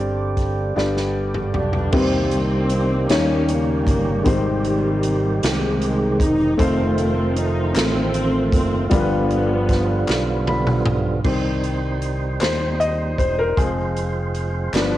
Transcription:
Already playing: fingered electric bass G1, upright piano G2 C4 D4 G4 D5, tonewheel organ D3 G3 C4 G4
0.37 kick, cross-stick, closed hi-hat
0.76 fingered electric bass G1, upright piano G2 B3 D4 G4 D5, tonewheel organ D3 G3 B3 G4, snare
0.97 snare
1.34 mid tom
1.54 fingered electric bass B1, string section D4, floor tom
1.73 floor tom
1.92 fingered electric bass C2, upright piano C3 A#3 C4 D#4 G4 B4, tonewheel organ D#3 G3 A#3 C4 G4, string section D#3 G3 C4, kick, crash
2.00 upright piano C5
2.31 string section D#3 G3 C4, closed hi-hat
2.69 closed hi-hat
3.09 fingered electric bass D#2, upright piano D#3 A#3 C#4 D#4 G4 C#5, tonewheel organ D#3 G3 A#3 C#4 G4, string section G3 A#3 C#4, snare, closed hi-hat
3.48 string section C#3 G3 A#3, closed hi-hat
3.87 fingered electric bass G1, kick, closed hi-hat
4.24 fingered electric bass G#1, upright piano G#2 D#3 C4 D#4 G4 C5, string section C3 D#3 G3, tonewheel organ D#3 C4 G4, kick, closed hi-hat
4.65 closed hi-hat
5.03 closed hi-hat
5.42 fingered electric bass C2, string section C3 D#3 G#3, snare, closed hi-hat
5.81 closed hi-hat
6.20 fingered electric bass E1, string section D#4, kick, closed hi-hat
6.57 fingered electric bass F1, tonewheel organ D#3 F3 A3 C4 E4, string section D#3 A3 C4, upright piano A3 C4 D#4 F4 C5, kick, closed hi-hat
6.64 tonewheel organ F4
6.98 string section C4, closed hi-hat
7.36 string section D#4, closed hi-hat
7.75 fingered electric bass A1, string section D#3 A3 C4, snare, clap, closed hi-hat
8.14 closed hi-hat
8.52 fingered electric bass F#1, string section C4, kick, closed hi-hat
8.90 fingered electric bass G1, upright piano G2 G3 B3 D4 F4 A#4, tonewheel organ D3 F3 G3 B3 E4, string section D3 F3, kick, closed hi-hat
8.94 string section B3, tonewheel organ F4
9.00 upright piano B4
9.31 closed hi-hat
9.69 kick, snare, closed hi-hat
10.08 fingered electric bass B1, snare, clap
10.47 upright piano B5, high tom
10.67 mid tom
10.86 fingered electric bass B1, mid tom
11.24 fingered electric bass C2, upright piano D#3 G3 C4, tonewheel organ G3 C4 D4 C5, kick, crash
11.31 tonewheel organ D#4
11.63 closed hi-hat
12.02 closed hi-hat
12.41 fingered electric bass D#2, upright piano C5, snare, clap, closed hi-hat
12.80 upright piano D#5, closed hi-hat
13.18 fingered electric bass E1, upright piano C5, kick, closed hi-hat
13.39 upright piano A#4
13.56 fingered electric bass F1, upright piano F3 G#3 C4 G#4, tonewheel organ G3 C4 F4 C5, kick, closed hi-hat
13.64 tonewheel organ G#3
13.97 closed hi-hat
14.35 closed hi-hat
14.73 fingered electric bass G1, upright piano F3 B3 D4, tonewheel organ G3 D4 F4 A#4, snare, clap, closed hi-hat
14.80 tonewheel organ B4

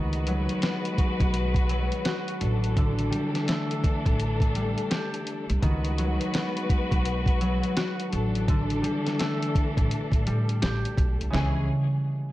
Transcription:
Already playing: upright bass C#2, harp D#3 A3 G4, string section G#3 F#4 B4
0.13 closed hi-hat
0.27 harp F#3, closed hi-hat
0.49 closed hi-hat
0.62 harp B3, snare, closed hi-hat
0.85 closed hi-hat
0.98 kick, closed hi-hat
1.20 upright bass B1, kick, closed hi-hat
1.34 closed hi-hat
1.54 kick, closed hi-hat
1.69 harp F#3, closed hi-hat
1.92 closed hi-hat
2.05 harp F#4, snare, closed hi-hat
2.28 closed hi-hat
2.41 upright bass A1, string section E3 D4 A4, closed hi-hat
2.64 closed hi-hat
2.77 harp D3, kick, closed hi-hat
2.99 closed hi-hat
3.10 harp G3, closed hi-hat
3.35 snare, closed hi-hat
3.48 harp A3, snare, closed hi-hat
3.71 closed hi-hat
3.84 kick, closed hi-hat
4.06 upright bass A1, kick, closed hi-hat
4.20 closed hi-hat
4.40 kick, closed hi-hat
4.55 harp G3, closed hi-hat
4.78 closed hi-hat
4.90 harp G4, snare, closed hi-hat
5.14 closed hi-hat
5.27 closed hi-hat
5.49 upright bass C2, closed hi-hat
5.62 upright bass C#2, harp D#3, string section G#3 F#4 B4, kick, closed hi-hat
5.85 closed hi-hat
5.98 harp F#3, closed hi-hat
6.21 closed hi-hat
6.34 harp B3, snare, closed hi-hat
6.57 closed hi-hat
6.69 kick, closed hi-hat
6.91 upright bass B1, kick, closed hi-hat
7.05 closed hi-hat
7.26 kick, closed hi-hat
7.41 harp F#3, closed hi-hat
7.63 closed hi-hat
7.77 harp F#4, snare, closed hi-hat
8.00 closed hi-hat
8.12 upright bass A1, string section E3 D4 A4, closed hi-hat
8.35 closed hi-hat
8.48 harp D3, kick, closed hi-hat
8.70 closed hi-hat
8.82 harp G3, closed hi-hat
9.07 snare, closed hi-hat
9.19 harp A3, snare, closed hi-hat
9.42 closed hi-hat
9.55 kick, closed hi-hat
9.77 upright bass A1, kick, closed hi-hat
9.91 closed hi-hat
10.12 upright bass A1, kick, closed hi-hat
10.27 upright bass A2, harp G3, closed hi-hat
10.49 closed hi-hat
10.62 upright bass A1, harp G4, snare, closed hi-hat
10.85 closed hi-hat
10.97 upright bass B1, kick, closed hi-hat
11.21 upright bass C2, closed hi-hat
11.30 upright bass C#2, harp C#3 E3, string section E3 C#4 G#4, floor tom
11.34 harp G#3 C#4, snare

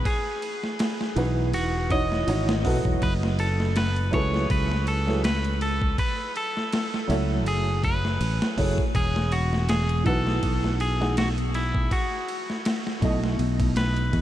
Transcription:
0.05 clean electric guitar G#4, kick, ride
0.42 ride
0.64 snare
0.79 snare, ride
1.01 snare
1.16 fingered electric bass B1, felt piano E3 D#4 F#4 B4, ride
1.53 fingered electric bass E1, clean electric guitar F#4, ride
1.90 felt piano E3 D#4 F#4 C#5, clean electric guitar D#5, kick, ride
2.12 snare
2.27 fingered electric bass G#1, felt piano E3 D#4 F#4 C#5, ride
2.49 snare
2.63 fingered electric bass B1, felt piano F#3 E4 F#4 A4 B4, kick, open hi-hat
2.85 fingered electric bass E1, kick
3.02 fingered electric bass F#1, clean electric guitar B4, kick, ride
3.23 snare
3.39 clean electric guitar A4, ride
3.60 snare
3.76 clean electric guitar B4, snare, ride
3.96 ride
4.11 fingered electric bass C#2, felt piano F#3 E4 G#4 A4, clean electric guitar C#5, kick, ride
4.15 felt piano B4
4.34 snare
4.50 fingered electric bass C#2, clean electric guitar B4, kick, ride
4.71 snare
4.87 clean electric guitar A4, ride
5.06 felt piano F#3 E4 G#4 A4 B4, snare
5.24 clean electric guitar B4, snare, ride
5.45 ride
5.61 clean electric guitar A4, ride
5.82 kick
5.98 clean electric guitar B4, kick, ride
6.36 clean electric guitar A4, ride
6.57 snare
6.73 snare, ride
6.94 snare
7.07 fingered electric bass C#2, felt piano F#3 A3 E4 F#4 C#5, ride
7.46 fingered electric bass F#1, clean electric guitar G#4, ride
7.84 clean electric guitar B4, kick, ride
8.05 snare
8.21 fingered electric bass A1, ride
8.42 snare
8.57 fingered electric bass F#1, felt piano F#3 E4 G#4 A4 C#5, kick, open hi-hat
8.78 kick
8.95 fingered electric bass E1, clean electric guitar G#4, kick, ride
9.16 snare
9.32 clean electric guitar F#4, ride
9.53 snare
9.69 clean electric guitar G#4, snare, ride
9.89 ride
10.04 fingered electric bass B1, felt piano E3 D#4 F#4 B4, clean electric guitar A4, kick, ride
10.27 snare
10.43 fingered electric bass B1, kick, ride
10.64 snare
10.80 clean electric guitar G#4, ride
11.00 felt piano E3 D#4 F#4 G#4, snare
11.17 clean electric guitar F#4, snare, ride
11.38 ride
11.54 clean electric guitar E4, ride
11.75 kick
11.91 clean electric guitar F#4, kick, ride
12.29 ride
12.50 snare
12.65 snare, ride
12.87 snare
13.01 fingered electric bass B1, felt piano B2 A3 E4 D#5, kick, ride
13.23 snare
13.39 fingered electric bass B1, ride
13.60 kick, ride
13.76 clean electric guitar B4, snare, ride
13.97 ride
14.13 fingered electric bass E2, kick, ride

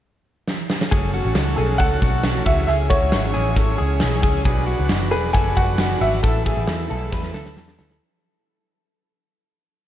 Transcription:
0.48 snare
0.70 snare
0.81 snare
0.91 picked electric bass F#1, clean electric guitar F#3 A3 C#4 F#4 G#4, transistor combo organ F#4 A4 C#5, kick, closed hi-hat
1.14 clean electric guitar F#4, closed hi-hat
1.24 picked electric bass A1, clean electric guitar A3 C#4 F#4
1.35 picked electric bass C#2, snare, closed hi-hat
1.56 picked electric bass B1, clean electric guitar F#3 A3 C#4 F#4 G#4, upright piano A4, closed hi-hat
1.78 picked electric bass C#2, clean electric guitar A4, upright piano F#5, kick, closed hi-hat
1.90 clean electric guitar A3 C#4 F#4
2.02 picked electric bass B1, clean electric guitar F#4, kick, closed hi-hat
2.23 snare, closed hi-hat
2.35 clean electric guitar A3 C#4 F#4
2.46 picked electric bass C#2, clean electric guitar C#3 E3 G#3 C#4 F#4 G#4, transistor combo organ E4 G#4 C#5, upright piano E5, kick, open hi-hat
2.67 picked electric bass C#2, clean electric guitar G#4, upright piano E5, closed hi-hat
2.90 clean electric guitar F#4, upright piano C#5, kick, closed hi-hat
3.00 picked electric bass C#2, clean electric guitar G#3 C#4 G#4
3.12 picked electric bass G#1, snare, closed hi-hat
3.34 picked electric bass A1, clean electric guitar C#3 E3 G#3 C#4 G#4, closed hi-hat
3.56 picked electric bass G#1, clean electric guitar A4, kick, closed hi-hat
3.67 clean electric guitar G#3 C#4 G#4
3.78 picked electric bass C#2, clean electric guitar G#4, closed hi-hat
4.00 picked electric bass B1, snare, closed hi-hat
4.12 clean electric guitar G#3 C#4 G#4
4.22 picked electric bass C#2, clean electric guitar G#4, kick, open hi-hat
4.45 picked electric bass B1, clean electric guitar F#3 B3 D4 F#4 G#4, transistor combo organ D4 F#4 B4, kick, closed hi-hat
4.67 clean electric guitar F#4, closed hi-hat
4.78 picked electric bass C#2, clean electric guitar B3 D4 F#4
4.89 picked electric bass F#1, snare, closed hi-hat
5.11 picked electric bass E1, clean electric guitar B2 F#3 B3 D4 F#4 G#4, upright piano B4, closed hi-hat
5.33 picked electric bass F#1, clean electric guitar A4, upright piano G#5, kick, closed hi-hat
5.46 clean electric guitar B3 D4 F#4
5.56 picked electric bass F#1, clean electric guitar F#4, upright piano F#5, kick, closed hi-hat
5.78 snare, closed hi-hat
5.90 clean electric guitar B3 D4 F#4
6.01 picked electric bass G#1, clean electric guitar F#4, upright piano E5, open hi-hat
6.23 picked electric bass A1, clean electric guitar A3 B3 E4 A4, transistor combo organ E4 A4 B4, kick, closed hi-hat
6.45 clean electric guitar G#4, kick, closed hi-hat
6.57 picked electric bass A1, clean electric guitar B3 E4 A4
6.67 picked electric bass E2, snare, closed hi-hat
6.90 picked electric bass B1, clean electric guitar A3 B3 E4 A4, closed hi-hat
7.12 picked electric bass E2, clean electric guitar B4, kick, snare
7.23 clean electric guitar B3 E4 A4, snare
7.34 picked electric bass D2, clean electric guitar A4, snare
7.45 snare
7.57 picked electric bass E2, snare
7.68 clean electric guitar B3 E4 A4, snare
7.78 picked electric bass D2, clean electric guitar A4, snare
7.90 snare

